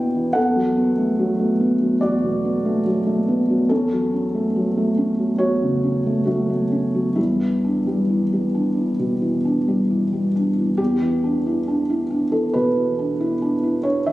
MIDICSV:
0, 0, Header, 1, 2, 480
1, 0, Start_track
1, 0, Tempo, 831025
1, 210, Time_signature, 4, 2, 24, 8
1, 1648, Tempo, 847458
1, 3088, Tempo, 898204
1, 5968, Tempo, 872093
1, 7806, End_track
2, 0, Start_track
2, 0, Title_t, "Felt piano"
2, 0, Program_c, 0, 0
2, 0, Control_c, 0, 64, 127
2, 0, Note_on_c, 0, 47, 35
2, 0, Note_on_c, 0, 52, 38
2, 0, Note_on_c, 0, 59, 35
2, 0, Note_on_c, 0, 64, 38
2, 0, Note_on_c, 0, 71, 52
2, 0, Note_on_c, 0, 79, 73
2, 86, Note_off_c, 0, 52, 0
2, 86, Note_on_c, 0, 52, 29
2, 159, Note_off_c, 0, 59, 0
2, 183, Note_off_c, 0, 71, 0
2, 190, Note_on_c, 0, 78, 75
2, 200, Note_on_c, 0, 69, 58
2, 203, Note_off_c, 0, 79, 0
2, 203, Note_on_c, 0, 40, 45
2, 209, Note_off_c, 0, 52, 0
2, 219, Control_c, 0, 64, 0
2, 221, Note_off_c, 0, 64, 0
2, 222, Note_off_c, 0, 47, 0
2, 322, Note_on_c, 0, 54, 32
2, 328, Control_c, 0, 64, 127
2, 445, Note_on_c, 0, 59, 37
2, 518, Note_off_c, 0, 54, 0
2, 564, Note_on_c, 0, 57, 32
2, 639, Note_off_c, 0, 59, 0
2, 687, Note_on_c, 0, 54, 39
2, 759, Note_off_c, 0, 57, 0
2, 803, Note_on_c, 0, 57, 32
2, 880, Note_off_c, 0, 54, 0
2, 925, Note_on_c, 0, 59, 33
2, 998, Note_off_c, 0, 57, 0
2, 1052, Note_on_c, 0, 54, 27
2, 1119, Note_off_c, 0, 59, 0
2, 1141, Note_off_c, 0, 69, 0
2, 1142, Note_off_c, 0, 40, 0
2, 1159, Note_off_c, 0, 78, 0
2, 1160, Note_on_c, 0, 74, 64
2, 1167, Note_on_c, 0, 66, 50
2, 1170, Note_on_c, 0, 40, 37
2, 1242, Note_off_c, 0, 54, 0
2, 1290, Note_on_c, 0, 47, 34
2, 1415, Note_on_c, 0, 59, 31
2, 1481, Note_off_c, 0, 47, 0
2, 1532, Note_on_c, 0, 57, 35
2, 1604, Note_off_c, 0, 59, 0
2, 1625, Note_off_c, 0, 66, 0
2, 1644, Note_off_c, 0, 74, 0
2, 1650, Note_on_c, 0, 54, 31
2, 1722, Note_off_c, 0, 57, 0
2, 1769, Note_on_c, 0, 57, 30
2, 1840, Note_off_c, 0, 54, 0
2, 1892, Note_on_c, 0, 59, 33
2, 1960, Note_off_c, 0, 57, 0
2, 2013, Note_on_c, 0, 54, 31
2, 2081, Note_off_c, 0, 59, 0
2, 2105, Note_off_c, 0, 40, 0
2, 2124, Note_on_c, 0, 69, 64
2, 2130, Note_off_c, 0, 54, 0
2, 2131, Note_on_c, 0, 61, 48
2, 2133, Note_on_c, 0, 40, 39
2, 2136, Control_c, 0, 64, 0
2, 2215, Control_c, 0, 64, 127
2, 2258, Note_on_c, 0, 54, 28
2, 2364, Note_off_c, 0, 61, 0
2, 2372, Note_on_c, 0, 61, 31
2, 2445, Note_off_c, 0, 54, 0
2, 2494, Note_on_c, 0, 57, 31
2, 2562, Note_off_c, 0, 61, 0
2, 2614, Note_on_c, 0, 54, 35
2, 2682, Note_off_c, 0, 57, 0
2, 2736, Note_on_c, 0, 57, 30
2, 2803, Note_off_c, 0, 54, 0
2, 2850, Note_on_c, 0, 61, 31
2, 2923, Note_off_c, 0, 57, 0
2, 2969, Note_on_c, 0, 54, 22
2, 3041, Note_off_c, 0, 61, 0
2, 3069, Note_off_c, 0, 40, 0
2, 3081, Note_on_c, 0, 73, 64
2, 3087, Note_off_c, 0, 69, 0
2, 3087, Note_on_c, 0, 66, 47
2, 3091, Note_on_c, 0, 40, 29
2, 3159, Note_off_c, 0, 54, 0
2, 3211, Note_on_c, 0, 49, 31
2, 3322, Note_on_c, 0, 61, 27
2, 3396, Note_off_c, 0, 49, 0
2, 3444, Note_on_c, 0, 57, 33
2, 3512, Note_off_c, 0, 61, 0
2, 3537, Note_off_c, 0, 66, 0
2, 3547, Note_off_c, 0, 57, 0
2, 3547, Note_on_c, 0, 66, 44
2, 3555, Note_on_c, 0, 57, 39
2, 3556, Note_off_c, 0, 73, 0
2, 3556, Note_on_c, 0, 54, 25
2, 3667, Note_off_c, 0, 57, 0
2, 3675, Note_on_c, 0, 57, 26
2, 3749, Note_off_c, 0, 54, 0
2, 3794, Note_on_c, 0, 61, 27
2, 3869, Note_off_c, 0, 57, 0
2, 3917, Note_on_c, 0, 54, 25
2, 3989, Note_off_c, 0, 61, 0
2, 4020, Note_off_c, 0, 40, 0
2, 4029, Note_on_c, 0, 64, 46
2, 4034, Note_off_c, 0, 66, 0
2, 4036, Note_on_c, 0, 55, 34
2, 4038, Note_on_c, 0, 40, 36
2, 4039, Note_off_c, 0, 54, 0
2, 4050, Control_c, 0, 64, 0
2, 4149, Control_c, 0, 64, 127
2, 4164, Note_on_c, 0, 52, 24
2, 4289, Note_on_c, 0, 62, 26
2, 4358, Note_off_c, 0, 52, 0
2, 4402, Note_off_c, 0, 55, 0
2, 4410, Note_on_c, 0, 55, 30
2, 4481, Note_off_c, 0, 62, 0
2, 4531, Note_on_c, 0, 52, 27
2, 4601, Note_off_c, 0, 55, 0
2, 4654, Note_on_c, 0, 55, 28
2, 4721, Note_off_c, 0, 52, 0
2, 4771, Note_on_c, 0, 62, 27
2, 4842, Note_off_c, 0, 55, 0
2, 4897, Note_on_c, 0, 52, 21
2, 4960, Note_off_c, 0, 62, 0
2, 4983, Note_off_c, 0, 40, 0
2, 5010, Note_on_c, 0, 47, 25
2, 5083, Note_off_c, 0, 52, 0
2, 5131, Note_on_c, 0, 52, 28
2, 5200, Note_off_c, 0, 47, 0
2, 5255, Note_on_c, 0, 62, 25
2, 5321, Note_off_c, 0, 52, 0
2, 5377, Note_on_c, 0, 55, 31
2, 5444, Note_off_c, 0, 62, 0
2, 5499, Note_on_c, 0, 52, 25
2, 5565, Note_off_c, 0, 55, 0
2, 5617, Note_on_c, 0, 55, 24
2, 5687, Note_off_c, 0, 52, 0
2, 5724, Note_off_c, 0, 64, 0
2, 5739, Note_on_c, 0, 62, 26
2, 5807, Note_off_c, 0, 55, 0
2, 5860, Note_on_c, 0, 52, 24
2, 5928, Note_off_c, 0, 62, 0
2, 5962, Note_on_c, 0, 67, 58
2, 5971, Note_on_c, 0, 40, 35
2, 5976, Note_off_c, 0, 52, 0
2, 5980, Control_c, 0, 64, 0
2, 6056, Control_c, 0, 64, 127
2, 6097, Note_on_c, 0, 52, 31
2, 6217, Note_on_c, 0, 62, 33
2, 6290, Note_off_c, 0, 52, 0
2, 6343, Note_on_c, 0, 64, 32
2, 6409, Note_off_c, 0, 62, 0
2, 6460, Note_on_c, 0, 62, 35
2, 6531, Note_off_c, 0, 64, 0
2, 6581, Note_on_c, 0, 64, 30
2, 6648, Note_off_c, 0, 62, 0
2, 6694, Note_on_c, 0, 62, 29
2, 6768, Note_off_c, 0, 64, 0
2, 6808, Note_off_c, 0, 67, 0
2, 6812, Note_on_c, 0, 69, 46
2, 6815, Note_on_c, 0, 52, 25
2, 6884, Note_off_c, 0, 62, 0
2, 6909, Note_off_c, 0, 40, 0
2, 6932, Note_off_c, 0, 69, 0
2, 6932, Note_on_c, 0, 71, 62
2, 6941, Note_on_c, 0, 47, 31
2, 7005, Note_off_c, 0, 52, 0
2, 7058, Note_on_c, 0, 52, 30
2, 7127, Note_off_c, 0, 47, 0
2, 7180, Note_on_c, 0, 62, 31
2, 7246, Note_off_c, 0, 52, 0
2, 7300, Note_on_c, 0, 64, 34
2, 7367, Note_off_c, 0, 62, 0
2, 7418, Note_on_c, 0, 62, 30
2, 7486, Note_off_c, 0, 64, 0
2, 7535, Note_on_c, 0, 64, 29
2, 7606, Note_off_c, 0, 62, 0
2, 7645, Note_on_c, 0, 73, 53
2, 7649, Note_off_c, 0, 71, 0
2, 7653, Note_on_c, 0, 62, 31
2, 7724, Note_off_c, 0, 64, 0
2, 7768, Note_off_c, 0, 73, 0
2, 7773, Note_on_c, 0, 76, 54
2, 7776, Note_on_c, 0, 52, 29
2, 7806, Note_off_c, 0, 52, 0
2, 7806, Note_off_c, 0, 62, 0
2, 7806, Note_off_c, 0, 76, 0
2, 7806, End_track
0, 0, End_of_file